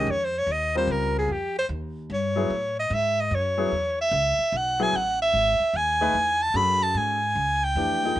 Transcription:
Already playing: D#5
0.07 F2 C#5
0.25 C5
0.38 C#5
0.47 D#2
0.52 D#5
0.75 G3 C4 F4 A#4 C5
0.87 C#2 A#4
1.18 G#4
1.28 F2
1.32 G4
1.59 C5
1.69 D#2
2.10 G2 C#5
2.36 F#3 B3 E4 G#4
2.50 A2
2.79 D#5
2.90 G#2 E5
3.21 D#5
3.31 F#2 C#5
3.58 F#3 B3 E4 G#4
3.72 E2
4.01 E5
4.11 C#2
4.38 muted upright bass stroke
4.52 B1
4.57 F#5
4.79 F#3 B3 E4 G#4 G#5
4.93 A1 F#5
5.22 E5
5.33 G#1
5.60 muted upright bass stroke
5.73 D#2 G#5
6.01 A3 D#4 G#4 B4
6.14 E2
6.42 A5
6.54 F#2 C#4 F#4 G#4 A4 B5
6.83 A5
6.95 G#2 G#5
7.35 C#2
7.64 G5
7.75 F2 E3 A3 D4 G4
8.04 F3 A#3 D#4 G#4
8.16 D#2

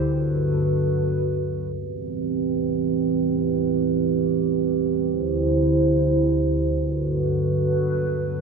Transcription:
Already playing: D3
0.06 G2 F#4 A4 B4
1.74 A2 E3 C4 G4 B4
5.09 D2 D3 E4 C5
6.77 G2 D3 F#4 A4 B4

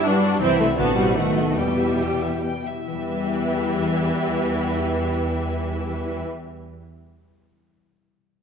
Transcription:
Already playing: G2 G3 B3 D4 G4
0.05 G3 D4 F#4 B4
0.25 D5
0.41 C2 C3 E3 G3 C4 E4 G5
0.58 C3 A3 C4 E4 E5
0.76 A1 A2 D3 F#3 B3 C4 F#4 A5
0.96 B2 G3 C4 F#4 F#5
1.16 B1 B2 D#3 A3 B3 F#4 F#5
1.36 B3 D#4 D#5
1.56 E2 B2 E3 G3 G4 G5
1.77 B3 E5
2.00 E4 G5
2.21 G4 E5
2.43 B4 G5
2.64 E4 E5
2.87 E2 E3 G3 B3 G4 B4 E5
2.95 G3
3.02 B3
3.09 E4
3.16 B4

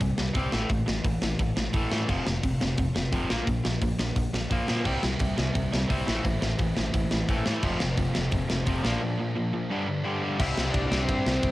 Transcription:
0.00 C2 C3 G3, kick, open hi-hat
0.18 C2 C3 G3, snare
0.35 C2 C3 G3 C4, kick, open hi-hat
0.52 A1 A2 E3 A3, snare
0.69 A1 A2 E3, kick, open hi-hat
0.87 A1 A2 E3, snare
1.05 A1 A2 E3, kick, open hi-hat
1.22 A1 A2 E3, snare
1.39 A1 A2 E3, kick, open hi-hat
1.57 A1 A2 E3, snare
1.73 A1 A2 E3 A3, kick, open hi-hat
1.91 A2 E3 A3, snare
2.09 F1 F2 C3 F3, kick, crash
2.26 F1 F2 C3, snare
2.43 F1 F2 C3, kick, open hi-hat
2.61 F1 F2 C3, snare
2.77 F1 F2 C3, kick, open hi-hat
2.95 F1 F2 C3, snare
3.12 F1 F2 C3 F3, kick, open hi-hat
3.29 A#1 A#2 F3 A#3, snare
3.46 A#1 A#2 F3, kick, open hi-hat
3.64 A#1 A#2 F3, snare
3.82 A#1 A#2 F3, kick, open hi-hat
3.99 A#1 A#2 F3, snare
4.16 A#1 A#2 F3, kick, open hi-hat
4.33 A#1 A#2 F3, snare
4.51 A#1 A#2 F3 A#3, kick, open hi-hat
4.68 A#2 F3 A#3, snare
4.85 C2 C3 G3 C4 E4, kick, crash
5.03 C2 C3 G3, snare
5.19 C2 C3 G3, kick, open hi-hat
5.37 C2 C3 G3, snare
5.55 C2 C3 G3, kick, open hi-hat
5.73 C2 C3 G3, snare
5.90 C2 C3 G3 C4, kick, open hi-hat
6.08 A1 A2 E3 A3 C4 E4, snare
6.25 A1 A2 E3, kick, open hi-hat
6.42 A1 A2 E3, snare
6.59 A1 A2 E3, kick, open hi-hat
6.77 A1 A2 E3, snare
6.94 A1 A2 E3, kick, open hi-hat
7.11 A1 A2 E3, snare
7.29 A1 A2 E3 A3, kick, open hi-hat
7.46 A2 E3 A3, snare
7.63 F1 F2 C3 F3 A3 C4, kick, crash
7.80 F1 F2 C3, snare
7.97 F1 F2 C3, kick, open hi-hat
8.15 F1 F2 C3, snare
8.32 F1 F2 C3, kick, open hi-hat
8.50 F1 F2 C3, snare
8.66 F1 F2 C3 F3, kick, open hi-hat
8.84 A#1 A#2 F3 A#3 D4, snare
9.02 A#2 F3
9.20 A#2 F3
9.36 A#2 F3
9.53 A#2 F3
9.71 G2 D3 F3 G3 B3 D4
9.88 G2 D3
10.04 G2 D3 G3
10.23 G2 D3 G3
10.38 C2 C3 G3 C4 E4 G4 E5, kick, crash
10.58 C2, snare
10.71 C2 D4 D5, kick, ride
10.90 C2 G3 C4 E4 G4, snare
10.94 C3
11.05 G2 C5, kick
11.09 C4, ride
11.26 C2, snare
11.31 C5
11.36 C4
11.43 C2, kick, ride

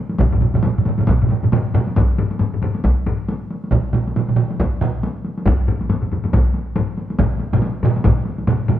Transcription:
0.09 taiko high
0.18 taiko, taiko low-mid, taiko mid, taiko high
0.32 taiko low-mid, taiko mid
0.41 taiko low-mid, taiko mid, taiko high
0.54 taiko low-mid, taiko mid, taiko high
0.63 taiko low-mid, taiko mid, taiko high
0.78 taiko low-mid, taiko mid
0.85 taiko low-mid, taiko mid, taiko high
0.98 taiko low-mid, taiko mid, taiko high
1.07 taiko, taiko low-mid, taiko mid, taiko high
1.22 taiko low-mid, taiko mid
1.29 taiko low-mid, taiko mid, taiko high
1.43 taiko low-mid, taiko mid, taiko high
1.52 taiko low-mid, taiko mid, taiko high
1.74 taiko low-mid, taiko mid, taiko high
1.87 taiko high
1.96 taiko, taiko low-mid, taiko high
2.18 taiko low-mid, taiko high
2.31 taiko high
2.39 taiko low-mid, taiko high
2.54 taiko low-mid
2.62 taiko low-mid, taiko high
2.75 taiko high
2.84 taiko, taiko high
3.06 taiko low-mid, taiko high
3.28 taiko high
3.51 taiko high
3.64 taiko high
3.71 taiko, taiko mid, taiko high
3.93 taiko mid, taiko high
4.07 taiko high
4.16 taiko mid, taiko high
4.29 taiko mid
4.36 taiko mid, taiko high
4.51 taiko high
4.60 taiko, taiko high
4.81 taiko mid, taiko high
5.03 taiko high
5.25 taiko high
5.38 taiko high
5.46 taiko, taiko low-mid, taiko high
5.68 taiko low-mid, taiko high
5.81 taiko high
5.90 taiko low-mid, taiko high
6.03 taiko low-mid
6.12 taiko low-mid, taiko high
6.24 taiko low-mid, taiko high
6.33 taiko, taiko low-mid, taiko high
6.54 taiko high
6.76 taiko low-mid, taiko high
6.97 taiko high
7.10 taiko high
7.19 taiko, taiko low-mid, taiko mid, taiko high
7.40 taiko high
7.53 taiko low-mid, taiko mid, taiko high
7.62 taiko high
7.83 taiko low-mid, taiko mid, taiko high
7.96 taiko high
8.04 taiko, taiko low-mid, taiko mid, taiko high
8.25 taiko high
8.38 taiko high
8.47 taiko low-mid, taiko mid, taiko high
8.68 taiko low-mid, taiko mid, taiko high

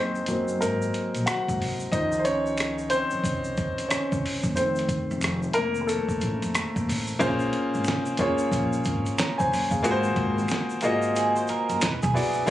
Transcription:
Already playing: F#1 A#3 C4 D#4 A#4 C5 D#5
0.15 shaker
0.26 F#1 F#3 A#3 C4, closed hi-hat, shaker
0.48 shaker
0.61 G#1 A#3 A#4, closed hi-hat, shaker
0.82 shaker
0.94 closed hi-hat, shaker
1.15 A#1, closed hi-hat, shaker
1.26 F#4 F#5, finger snap, cross-stick, closed hi-hat, shaker
1.48 G#1, kick, shaker
1.60 C2, open hi-hat
1.80 shaker
1.92 C#2 D#3 F3 D#4 C5 D#5, kick, closed hi-hat, shaker
2.12 shaker
2.19 C5
2.25 C#4 C#5, closed hi-hat, shaker
2.46 shaker
2.58 finger snap, cross-stick, closed hi-hat, shaker
2.78 shaker
2.90 C4 C5, muted upright bass stroke, closed hi-hat, shaker
3.11 F2, shaker
3.24 C2, kick, closed hi-hat, shaker
3.44 shaker
3.57 C#2, kick, closed hi-hat, shaker
3.78 closed hi-hat, shaker
3.89 C#4 C#5, finger snap, muted upright bass stroke, cross-stick, closed hi-hat, shaker
4.12 C2, kick, shaker
4.26 open hi-hat
4.43 F#1, kick, shaker
4.56 F1 D#3 A3 C4 C5, closed hi-hat, shaker
4.76 closed hi-hat, shaker
4.89 kick, closed hi-hat, shaker
5.11 F1, shaker
5.21 finger snap, cross-stick, closed hi-hat, shaker
5.43 shaker
5.53 F1 A#3 A#4, closed hi-hat
5.75 shaker
5.82 A#4
5.87 A3 A4, closed hi-hat, shaker
6.09 kick, shaker
6.21 A1, closed hi-hat, shaker
6.42 F2, closed hi-hat, shaker
6.55 finger snap, cross-stick, closed hi-hat, shaker
6.76 D#2, kick, shaker
6.89 A1, open hi-hat, shaker
7.07 shaker
7.19 A#1 A#3 C#4 F4 G#4 C5, kick, closed hi-hat, shaker
7.40 shaker
7.53 closed hi-hat
7.74 G#1, shaker
7.84 C2, finger snap, snare, closed hi-hat, shaker
8.06 shaker
8.17 C#2 A#3 C#4 F4 G#4 C#5, kick, closed hi-hat, shaker
8.38 shaker
8.52 A#1, kick, closed hi-hat, shaker
8.73 shaker
8.84 G#1, kick, closed hi-hat, shaker
9.06 closed hi-hat, shaker
9.18 C#5 A#5, finger snap, snare, closed hi-hat, shaker
9.38 C2 C5 G#5, kick, shaker
9.52 F#1, open hi-hat, shaker
9.71 G#4 F5, kick, shaker
9.83 G#1 A#3 F4 F#4 G#4 B4, closed hi-hat, shaker
9.91 C5
10.03 shaker
10.16 G#1, kick, closed hi-hat
10.38 shaker
10.48 finger snap, snare, closed hi-hat, shaker
10.70 shaker
10.81 G#1 A#3 F4 F#4 G#4 D#5, closed hi-hat, shaker
11.02 shaker
11.16 G#4, closed hi-hat, shaker
11.36 C5, shaker
11.47 A#4, muted upright bass stroke, closed hi-hat, shaker
11.69 F#1, closed hi-hat, shaker
11.81 E1 B4, finger snap, snare, closed hi-hat, shaker
12.03 B1 G#4, kick, shaker
12.13 B3 E4 F#4 G#4 D5, open hi-hat, shaker
12.33 C#2, shaker
12.46 A#3 D#4 F4, shaker

